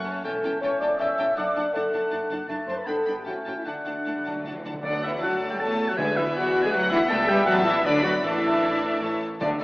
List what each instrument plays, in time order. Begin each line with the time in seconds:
Already playing: double bass section F#1, cello section F#2, bassoon A3, clarinet C#4, oboe F#5
0.06 viola section C#4, violin section C#5 A5
0.23 double bass section E1, cello section E2, bassoon A3, viola section C#4, clarinet C#4, french horn section A4, violin section G5 A5, oboe G5, flute section A5
0.42 double bass section E1, cello section E2, viola section C#4, violin section G5 A5
0.61 double bass section E1, cello section E2, bassoon A3, clarinet C#4, viola section C#4, french horn section C#5, oboe G5, violin section G5 A5, flute section C#6
0.79 double bass section E1, cello section E2, viola section C#4, french horn section D5, violin section G5 A5, flute section D6
0.97 double bass section E1, cello section E2, bassoon A3, clarinet C#4, viola section C#4, french horn section E5, violin section G5 A5, oboe G5, flute section E6
1.17 double bass section E1, cello section E2, viola section C#4, violin section G5 A5
1.36 double bass section F#1, cello section F#2, bassoon A3, clarinet D4, viola section D4, french horn section D5, oboe F#5, violin section F#5 A5, flute section D6
1.55 double bass section F#1, cello section F#2, viola section D4, violin section F#5 A5
1.72 double bass section F#1, cello section F#2, bassoon A3, clarinet D4, viola section D4, french horn section A4, oboe F#5, violin section F#5 A5, flute section A5
1.92 double bass section F#1, cello section F#2, viola section D4, violin section F#5 A5
2.11 double bass section F#1, cello section F#2, viola section D4, violin section F#5 A5
2.29 double bass section F#1, cello section F#2, viola section D4, violin section F#5 A5
2.48 double bass section F#1, cello section F#2, bassoon A3, clarinet D4, viola section D4, oboe A5, violin section A5
2.66 double bass section F#1, cello section F#2, viola section D4, french horn section C5, violin section A5, flute section C6
2.77 french horn section B4, flute section B5
2.85 double bass section G1, cello section G2, bassoon B3, clarinet D4, viola section D4, french horn section A4, oboe G5, violin section G5 B5, flute section A5
3.05 double bass section G1, cello section G2, viola section D4, violin section G5 B5
3.15 french horn section G4, flute section G5
3.24 double bass section A1, cello section A2, bassoon A3, clarinet C#4, viola section C#4, french horn section F#4, flute section F#5, oboe G5, violin section G5 A5
3.45 double bass section A1, cello section A2, viola section C#4, violin section G5 A5
3.56 french horn section E4, flute section E5
3.64 double bass section D2, timpani D3, cello section D3, bassoon A3, clarinet D4, viola section D4, french horn section D4, flute section D5, oboe F#5, violin section F#5 A5
3.81 timpani D3
3.85 double bass section D2, cello section D3, timpani D3, viola section D4, violin section F#5 A5
4.04 double bass section D2, timpani D3, cello section A3, viola section D4, violin section F#5 A5
4.11 timpani D3, cello section G3
4.20 timpani D3
4.25 double bass section D2, timpani D3, cello section F#3, viola section D4, violin section F#5 A5
4.35 timpani D3
4.44 double bass section D2, timpani D3, viola section D4, violin section F#5 A5
4.51 timpani D3, cello section E3
4.59 timpani D3
4.64 double bass section D2, cello section D3, timpani D3, viola section D4, violin section F#5 A5
4.74 timpani D3
4.83 double bass section D2, timpani D3, cello section D3, bassoon F#3, viola section B3, french horn section D4, clarinet A4, oboe D5, flute section D5, violin section F#5
5.03 cello section E3, french horn section E4, oboe E5, flute section E5
5.22 double bass section F#2, cello section F#3, viola section A3, french horn section F#4, violin section D5 A5, oboe F#5, flute section F#5
5.50 cello section G3, french horn section G4, flute section G5, oboe G5
5.59 double bass section E2, cello section A3, viola section A3, french horn section A4, violin section C#5 A5, flute section A5, oboe A5
5.88 cello section F#3, french horn section F#4, oboe F#5, flute section F#5
5.97 double bass section D2, timpani D3, bassoon E3, cello section G#3, viola section B3, french horn section G#4, violin section B4 E5, clarinet B4, oboe G#5, flute section G#5
6.17 cello section E3, french horn section E4, oboe E5, flute section E5
6.35 double bass section E2, cello section F#3, french horn section F#4, violin section D5, oboe F#5, flute section F#5
6.62 cello section G#3, french horn section G#4, oboe G#5, flute section G#5
6.71 double bass section D2, cello section F#3, viola section B3, french horn section F#4, oboe F#5, flute section F#5, violin section F#5
6.89 cello section E3, french horn section E4, oboe E5, flute section E5
7.09 double bass section C#2, bassoon G3, cello section A3, french horn section A4, clarinet E5, violin section E5 G5, oboe A5, flute section A5
7.28 cello section G3, french horn section G4, flute section G5, oboe G5
7.45 double bass section A1, cello section F#3, french horn section F#4, violin section E5 A5, flute section F#5, oboe F#5
7.64 cello section E3, french horn section E4, flute section E5, oboe E5
7.84 double bass section D2, cello section D3, bassoon F#3, french horn section D4, flute section D5, violin section D5 B5, clarinet D5, oboe D5
8.02 cello section F#3, french horn section F#4, flute section F#5, oboe F#5
8.22 double bass section A1, timpani A2, cello section E3, bassoon A3, viola section D4, french horn section E4, violin section D5 A5, clarinet D5, flute section E5, oboe E5
8.63 double bass section A2
9.01 double bass section A1, viola section A3, bassoon A3, clarinet C#5, violin section C#5 A5
9.40 double bass section D2, timpani D3, cello section D3, bassoon A3, viola section A3, french horn section D4, violin section D5 A5, clarinet D5, oboe D5, flute section D5
9.59 double bass section D2, cello section E3, bassoon A3, french horn section E4, violin section D5 A5, clarinet D5, flute section E5, oboe E5